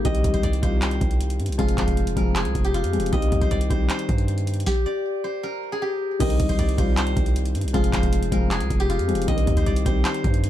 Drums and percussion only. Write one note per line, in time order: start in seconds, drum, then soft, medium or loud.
0.05 kick loud
0.05 closed hi-hat medium
0.15 closed hi-hat medium
0.24 kick medium
0.24 closed hi-hat medium
0.34 kick medium
0.34 closed hi-hat medium
0.43 closed hi-hat medium
0.53 closed hi-hat medium
0.63 kick loud
0.63 closed hi-hat medium
0.82 clap loud
0.82 closed hi-hat medium
0.91 closed hi-hat medium
1.01 kick loud
1.01 closed hi-hat medium
1.11 closed hi-hat medium
1.21 closed hi-hat medium
1.30 closed hi-hat medium
1.40 closed hi-hat medium
1.46 closed hi-hat medium
1.52 closed hi-hat medium
1.59 kick loud
1.59 closed hi-hat medium
1.69 closed hi-hat medium
1.78 kick medium
1.78 clap loud
1.78 closed hi-hat medium
1.88 kick medium
1.88 closed hi-hat medium
1.97 closed hi-hat medium
2.07 closed hi-hat medium
2.16 kick loud
2.16 closed hi-hat medium
2.36 clap loud
2.36 closed hi-hat medium
2.45 closed hi-hat medium
2.55 kick loud
2.55 closed hi-hat medium
2.65 closed hi-hat medium
2.74 closed hi-hat medium
2.84 closed hi-hat medium
2.93 closed hi-hat medium
3.00 closed hi-hat medium
3.06 closed hi-hat medium
3.13 kick loud
3.13 closed hi-hat medium
3.22 closed hi-hat medium
3.32 kick medium
3.32 closed hi-hat medium
3.41 kick medium
3.41 closed hi-hat medium
3.51 closed hi-hat medium
3.61 closed hi-hat medium
3.70 kick loud
3.70 closed hi-hat medium
3.90 clap loud
3.90 closed hi-hat medium
3.99 closed hi-hat medium
4.09 kick loud
4.09 closed hi-hat medium
4.18 closed hi-hat medium
4.28 closed hi-hat medium
4.38 closed hi-hat medium
4.47 closed hi-hat medium
4.54 closed hi-hat medium
4.60 closed hi-hat medium
4.66 kick loud
4.66 snare medium
6.20 kick loud
6.20 closed hi-hat medium
6.20 crash loud
6.30 closed hi-hat medium
6.40 kick medium
6.40 closed hi-hat medium
6.49 kick loud
6.49 closed hi-hat medium
6.59 closed hi-hat medium
6.69 closed hi-hat medium
6.78 kick loud
6.78 closed hi-hat medium
6.97 clap loud
6.97 closed hi-hat medium
7.07 closed hi-hat medium
7.17 kick loud
7.17 closed hi-hat medium
7.26 closed hi-hat medium
7.36 closed hi-hat medium
7.45 closed hi-hat medium
7.55 closed hi-hat medium
7.61 closed hi-hat medium
7.68 closed hi-hat medium
7.74 kick loud
7.74 closed hi-hat medium
7.84 closed hi-hat medium
7.93 kick medium
7.93 clap loud
7.93 closed hi-hat medium
8.03 kick loud
8.03 closed hi-hat medium
8.13 closed hi-hat medium
8.23 closed hi-hat medium
8.32 kick loud
8.32 closed hi-hat medium
8.51 clap loud
8.51 closed hi-hat medium
8.60 closed hi-hat medium
8.70 kick loud
8.70 closed hi-hat medium
8.80 closed hi-hat medium
8.90 closed hi-hat medium
8.99 closed hi-hat medium
9.09 closed hi-hat medium
9.15 closed hi-hat medium
9.22 closed hi-hat medium
9.28 kick loud
9.28 closed hi-hat medium
9.38 closed hi-hat medium
9.47 kick medium
9.47 closed hi-hat medium
9.57 kick loud
9.57 closed hi-hat medium
9.66 closed hi-hat medium
9.76 closed hi-hat medium
9.86 kick loud
9.86 closed hi-hat medium
10.05 clap loud
10.05 closed hi-hat medium
10.14 closed hi-hat medium
10.24 kick loud
10.24 closed hi-hat medium
10.34 closed hi-hat medium
10.44 closed hi-hat medium